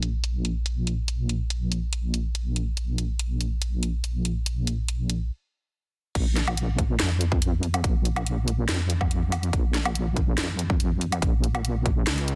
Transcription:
Already playing: A#1
0.03 closed hi-hat
0.24 closed hi-hat
0.45 closed hi-hat
0.66 closed hi-hat
0.87 closed hi-hat
1.08 closed hi-hat
1.29 closed hi-hat
1.50 closed hi-hat
1.72 closed hi-hat
1.93 closed hi-hat
2.14 closed hi-hat
2.35 closed hi-hat
2.56 closed hi-hat
2.77 closed hi-hat
2.98 closed hi-hat
3.19 closed hi-hat
3.41 closed hi-hat
3.62 closed hi-hat
3.83 closed hi-hat
4.04 closed hi-hat
4.25 closed hi-hat
4.46 closed hi-hat
4.67 closed hi-hat
4.88 closed hi-hat
5.10 closed hi-hat
6.15 A#1, kick, closed hi-hat, crash
6.36 snare, closed hi-hat
6.48 closed hi-hat, low woodblock
6.57 closed hi-hat
6.79 kick, closed hi-hat
7.00 F2, snare, closed hi-hat
7.21 closed hi-hat
7.32 kick
7.42 closed hi-hat
7.63 open hi-hat
7.74 closed hi-hat, low woodblock
7.84 A#1, kick, closed hi-hat
8.05 closed hi-hat
8.16 closed hi-hat, low woodblock
8.26 closed hi-hat
8.48 closed hi-hat
8.69 F2, snare, closed hi-hat
8.90 closed hi-hat
9.01 kick, low woodblock
9.11 closed hi-hat
9.32 open hi-hat, low woodblock
9.43 closed hi-hat
9.53 A#1, kick, closed hi-hat
9.74 snare, closed hi-hat
9.85 closed hi-hat, low woodblock
9.95 closed hi-hat
10.16 kick, closed hi-hat
10.38 F2, snare, closed hi-hat
10.59 closed hi-hat
10.70 kick
10.80 closed hi-hat
11.01 open hi-hat
11.12 closed hi-hat, low woodblock
11.22 A#1, kick, closed hi-hat
11.44 closed hi-hat
11.55 closed hi-hat, low woodblock
11.65 closed hi-hat
11.86 kick, closed hi-hat
12.07 C#2, snare, closed hi-hat
12.18 closed hi-hat
12.28 closed hi-hat

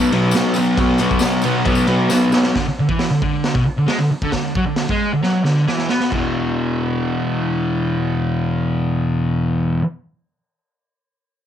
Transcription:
Already playing: B2 F#3 B3
0.00 tambourine
0.12 B2 F#3 B3, ride
0.31 B2, snare, tambourine
0.35 F#3 B3, ride
0.54 B2 F#3, ride, tambourine
0.58 B3
0.65 tambourine
0.78 B2 F#3 B3, kick, ride, tambourine
0.98 B2 F#3 B3, ride, tambourine
1.11 kick, tambourine
1.19 B2, snare, ride, tambourine
1.23 F#3 B3
1.42 B2 F#3 B3, ride, tambourine
1.65 B2 F#3 B3, kick, ride, tambourine
1.75 tambourine
1.87 B2 F#3 B3, ride
2.09 B2 F#3 B3, snare, tambourine
2.32 B2 F#3 B3, snare, tambourine
2.44 snare, tambourine
2.56 D3, kick, snare, open hi-hat
2.68 muted distorted electric guitar stroke
2.79 D3
2.89 E3, kick
2.99 snare, open hi-hat
3.10 D3
3.22 D3, kick
3.44 snare, open hi-hat
3.54 B2, kick
3.65 muted distorted electric guitar stroke
3.77 D3
3.87 G#3, snare, open hi-hat
3.98 D3
4.11 muted distorted electric guitar stroke
4.22 D3, kick
4.32 D3, kick, snare, open hi-hat
4.55 F#3, kick
4.66 D3
4.76 snare, open hi-hat
4.89 G#3, kick
5.13 D3
5.22 F#3, snare
5.44 D3, snare
5.67 E3, snare
5.78 snare
5.89 B3, snare
6.00 snare
6.10 E2 B2, kick, crash
6.15 E3

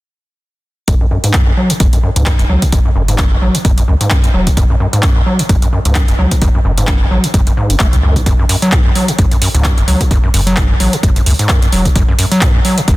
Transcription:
0.88 F#1 F#2, kick, closed hi-hat
1.01 F#2
1.11 F#2
1.24 G#2, closed hi-hat
1.33 F#2, kick, clap, closed hi-hat
1.47 F#2
1.57 F#3
1.70 A2, closed hi-hat
1.80 F#1 F#2, kick, closed hi-hat
1.93 F#2, closed hi-hat
2.03 F#2
2.16 C#2 G#2, closed hi-hat
2.26 F#2, kick, clap, closed hi-hat
2.39 F#1 F#2, closed hi-hat
2.49 C#2 F#3
2.62 A2, kick, closed hi-hat
2.72 F#1 F#2, kick, closed hi-hat
2.85 F#2
2.95 F#1 F#2
3.08 G#2, closed hi-hat
3.18 F#2, kick, clap, closed hi-hat
3.32 F#2
3.42 A1 F#3
3.55 A2, closed hi-hat
3.65 F#1 F#2, kick, closed hi-hat
3.78 F#2, closed hi-hat
3.88 C#2 F#2
4.01 G#2, closed hi-hat
4.10 F#2, kick, clap, closed hi-hat
4.24 F#2, closed hi-hat
4.34 E1 F#3
4.47 A2, kick, closed hi-hat
4.57 F#1 F#2, kick, closed hi-hat
4.70 F#2
4.80 F#2
4.93 G#2, closed hi-hat
5.03 F#2, kick, clap, closed hi-hat
5.16 F#2
5.26 F#3
5.39 A2, closed hi-hat
5.49 F#1 F#2, kick, closed hi-hat
5.62 F#2, closed hi-hat
5.73 F#2
5.85 C#2 G#2, closed hi-hat
5.95 F#2, kick, clap, closed hi-hat
6.08 F#1 F#2, closed hi-hat
6.19 C#2 F#3
6.31 A2, kick, closed hi-hat
6.42 F#1 F#2, kick, closed hi-hat
6.55 F#2
6.65 F#1 F#2
6.78 G#2, closed hi-hat
6.87 F#2, kick, clap, closed hi-hat
7.01 F#2
7.11 A1 F#3
7.24 A2, closed hi-hat
7.34 F#1 F#2, kick, closed hi-hat
7.47 F#2, closed hi-hat
7.57 G#2
7.70 F#1 F#2, closed hi-hat
7.80 F#1 A3, kick, clap, closed hi-hat
7.93 C#2 A2, closed hi-hat
8.03 F#2
8.16 A2, kick, closed hi-hat
8.26 F#1 F#2, kick, closed hi-hat
8.39 F#2
8.49 F#2, open hi-hat
8.62 F#3, closed hi-hat
8.72 F#2, kick, clap, closed hi-hat
8.85 F#2
8.95 F#3, open hi-hat
9.08 A2, closed hi-hat
9.19 F#1 F#2, kick, closed hi-hat
9.31 F#2, closed hi-hat
9.42 F#2, open hi-hat
9.54 C#2 G#2, closed hi-hat
9.64 F#2, kick, clap, closed hi-hat
9.77 F#1 F#2, closed hi-hat
9.88 C#2 F#3, open hi-hat
10.00 A2, kick, closed hi-hat
10.11 F#1 F#2, kick, closed hi-hat
10.24 F#2
10.34 F#1 F#2, open hi-hat
10.47 F#3, closed hi-hat
10.56 F#2, kick, clap, closed hi-hat
10.70 F#2
10.80 A1 F#3, open hi-hat
10.93 A2, closed hi-hat
11.03 F#1 F#2, kick, closed hi-hat
11.16 F#2, closed hi-hat
11.26 C#2 F#2, open hi-hat
11.39 G#2, closed hi-hat
11.49 F#2, kick, clap, closed hi-hat
11.62 F#2, closed hi-hat
11.72 E1 F#3, open hi-hat
11.85 A2, kick, closed hi-hat
11.96 F#1 F#2, kick, closed hi-hat
12.08 F#2
12.19 F#2, open hi-hat
12.31 F#3, closed hi-hat
12.41 F#2, kick, clap, closed hi-hat
12.55 F#2
12.65 F#3, open hi-hat
12.78 A2, closed hi-hat
12.88 F#1 F#2, kick, closed hi-hat

